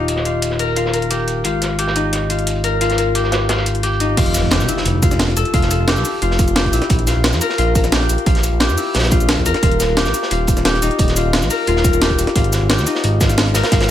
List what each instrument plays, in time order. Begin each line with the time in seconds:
Already playing: analog synth bass D#1, harp D#4 F4 G4 A#4
0.08 closed hi-hat
0.16 snare
0.25 harp F4, closed hi-hat
0.42 closed hi-hat
0.50 snare
0.59 harp A#4, closed hi-hat, open hi-hat
0.76 harp F4, closed hi-hat
0.86 snare
0.93 harp A#4, closed hi-hat
1.02 closed hi-hat
1.10 harp G4, closed hi-hat
1.19 closed hi-hat
1.27 closed hi-hat
1.44 analog synth bass G#1, harp F4, closed hi-hat
1.62 snare, closed hi-hat
1.79 harp G4, closed hi-hat
1.87 snare
1.95 harp D#4, closed hi-hat
2.12 snare, closed hi-hat
2.30 harp F4, closed hi-hat
2.39 closed hi-hat
2.47 closed hi-hat
2.55 closed hi-hat
2.64 harp A#4, closed hi-hat
2.81 harp F4, closed hi-hat
2.90 snare, closed hi-hat
2.98 harp A#4, closed hi-hat
3.15 harp G4, closed hi-hat
3.24 snare
3.32 snare, closed hi-hat
3.49 harp F4, snare, closed hi-hat
3.57 snare
3.66 closed hi-hat
3.75 closed hi-hat
3.83 harp G4, closed hi-hat
3.93 closed hi-hat
4.00 harp D#4, closed hi-hat
4.17 analog synth bass F1, harp F4, kick, closed hi-hat, crash, impact
4.26 closed hi-hat
4.34 snare, closed hi-hat, cabasa
4.43 analog synth bass F1
4.51 harp G4, snare, closed hi-hat
4.60 analog synth bass C2, snare, cabasa
4.68 harp E4, closed hi-hat, cabasa
4.77 snare
4.85 analog synth bass F1, closed hi-hat
5.03 harp F4, kick, closed hi-hat, cabasa
5.11 analog synth bass F1, snare, closed hi-hat, cabasa
5.19 snare, closed hi-hat
5.28 snare, closed hi-hat
5.36 analog synth bass F1, harp A4, closed hi-hat, cabasa
5.45 closed hi-hat
5.54 analog synth bass F1, harp F4, kick, closed hi-hat
5.62 snare, closed hi-hat
5.71 harp A4, closed hi-hat, cabasa
5.79 analog synth bass F1
5.88 harp G4, snare, closed hi-hat
5.96 analog synth bass C2, snare, cabasa
6.05 closed hi-hat, open hi-hat, cabasa
6.22 analog synth bass F1, harp F4, closed hi-hat
6.31 snare
6.39 kick, closed hi-hat, cabasa
6.47 analog synth bass F1, closed hi-hat, cabasa
6.56 harp G4, snare, closed hi-hat
6.65 kick, closed hi-hat
6.73 analog synth bass A#1, harp E4, closed hi-hat, cabasa
6.82 snare, closed hi-hat
6.90 analog synth bass A#1, kick, closed hi-hat
6.99 closed hi-hat
7.07 harp F4, snare, closed hi-hat, cabasa
7.16 analog synth bass A#1
7.24 snare, closed hi-hat
7.33 analog synth bass F2, snare, cabasa
7.41 harp A#4, closed hi-hat, cabasa
7.50 snare
7.58 analog synth bass A#1, harp F4, closed hi-hat
7.75 harp A#4, kick, closed hi-hat, cabasa
7.84 analog synth bass A#1, snare, closed hi-hat, cabasa
7.92 harp G4, snare, closed hi-hat
8.01 snare, closed hi-hat
8.09 analog synth bass A#1, closed hi-hat, cabasa
8.18 closed hi-hat
8.26 analog synth bass A#1, harp F4, kick, closed hi-hat
8.35 snare, closed hi-hat
8.43 closed hi-hat, cabasa
8.52 analog synth bass A#1
8.60 harp G4, snare, closed hi-hat
8.69 analog synth bass F2, snare, cabasa
8.78 harp E4, closed hi-hat, open hi-hat, cabasa
8.94 analog synth bass A#1, snare, closed hi-hat
8.98 snare, closed hi-hat
9.03 snare, closed hi-hat
9.11 harp F4, kick, closed hi-hat, cabasa
9.20 analog synth bass A#1, closed hi-hat, cabasa
9.29 snare, closed hi-hat
9.37 kick, closed hi-hat
9.46 analog synth bass F2, harp A#4, closed hi-hat, cabasa
9.54 snare, closed hi-hat
9.63 analog synth bass D#1, harp F4, kick, closed hi-hat
9.71 closed hi-hat
9.80 harp A#4, snare, closed hi-hat, cabasa
9.89 analog synth bass D#1
9.97 harp G4, snare, closed hi-hat
10.05 analog synth bass A#1, snare, cabasa
10.14 closed hi-hat, cabasa
10.23 snare
10.31 analog synth bass D#1, harp F4, closed hi-hat
10.47 kick, closed hi-hat, cabasa
10.57 analog synth bass D#1, snare, closed hi-hat, cabasa
10.65 harp G4, snare, closed hi-hat
10.74 snare, closed hi-hat
10.82 analog synth bass D#1, harp D#4, closed hi-hat, cabasa
10.91 closed hi-hat
10.99 analog synth bass D#1, kick, closed hi-hat
11.08 snare, closed hi-hat
11.16 harp F4, closed hi-hat, cabasa
11.25 analog synth bass D#1
11.33 snare, closed hi-hat
11.42 analog synth bass A#1, snare, cabasa
11.50 harp A#4, closed hi-hat, open hi-hat, cabasa
11.67 analog synth bass D#1, harp F4, closed hi-hat
11.76 snare
11.84 harp A#4, kick, closed hi-hat, cabasa
11.93 analog synth bass D#1, closed hi-hat, cabasa
12.02 harp G4, snare, closed hi-hat
12.10 kick, closed hi-hat
12.19 analog synth bass D#1, closed hi-hat, cabasa
12.27 snare, closed hi-hat
12.35 analog synth bass G#1, harp F4, kick, closed hi-hat
12.44 closed hi-hat
12.53 snare, closed hi-hat, cabasa
12.61 analog synth bass G#1
12.70 harp G4, snare, closed hi-hat
12.78 analog synth bass D#2, snare, cabasa
12.87 harp D#4, closed hi-hat, cabasa
12.95 snare
13.04 analog synth bass G#1, closed hi-hat
13.21 harp F4, kick, snare, closed hi-hat, cabasa
13.29 analog synth bass G#1, snare, closed hi-hat, cabasa
13.38 snare, closed hi-hat
13.46 snare, closed hi-hat
13.54 analog synth bass G#1, harp A#4, snare, closed hi-hat, cabasa
13.63 snare, closed hi-hat
13.72 analog synth bass G#1, harp F4, kick, snare, closed hi-hat
13.81 snare, closed hi-hat